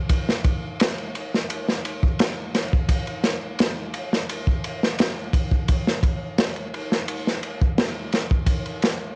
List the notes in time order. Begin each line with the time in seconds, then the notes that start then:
0.09 kick, ride
0.29 snare
0.44 kick, ride
0.80 snare, ride
0.98 ride
1.15 ride
1.34 snare
1.50 ride
1.68 snare
1.85 ride
2.03 kick
2.19 snare, ride
2.55 snare, ride
2.73 kick
2.89 kick, ride
3.07 ride
3.24 snare, ride
3.59 snare, ride
3.94 ride
4.13 snare
4.29 ride
4.47 kick
4.64 ride
4.83 snare
4.98 snare, ride
5.33 kick, ride
5.51 kick
5.68 kick, ride
5.87 snare
6.03 kick, ride
6.38 snare, ride
6.56 ride
6.74 ride
6.92 snare
7.08 ride
7.27 snare
7.43 ride
7.61 kick
7.78 snare, ride
8.12 snare, ride
8.31 kick
8.46 kick, ride
8.65 ride
8.82 snare, ride